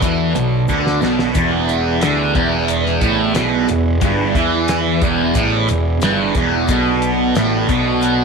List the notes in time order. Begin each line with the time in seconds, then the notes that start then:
Already playing: B3 F#4 A4 D5
0.02 E2 E3, kick, closed hi-hat, shaker
0.35 B1 B2, closed hi-hat, shaker
0.68 D2 D3, kick, shaker
0.87 snare
1.01 B1 B2, snare, shaker
1.19 snare
1.35 E1 E2 E4 G#4 D5, kick, closed hi-hat, shaker
1.68 closed hi-hat, shaker
2.01 D2 D3, snare, closed hi-hat, shaker
2.34 E1 E2, kick, closed hi-hat
2.68 closed hi-hat, shaker
2.86 snare
3.01 A1 A2, kick, closed hi-hat, shaker
3.35 B1 B2, snare, closed hi-hat, shaker
3.68 E1 E2, closed hi-hat, shaker
4.01 G1 G2, kick, closed hi-hat, shaker
4.35 E2 E3, kick, closed hi-hat, shaker
4.68 snare, closed hi-hat, shaker
5.02 E1 E2, kick, closed hi-hat, shaker
5.35 A1 A2, kick, closed hi-hat, shaker
5.68 E1 E2, closed hi-hat, shaker
6.01 G1 G2, snare, closed hi-hat, shaker
6.35 E1 E2, kick, closed hi-hat, shaker
6.68 B1 B2 B3 F#4 A4 D5, kick, closed hi-hat, shaker
7.02 closed hi-hat, shaker
7.35 A1 A2, snare, closed hi-hat, shaker
7.68 B1 B2, kick, closed hi-hat, shaker
8.02 closed hi-hat, shaker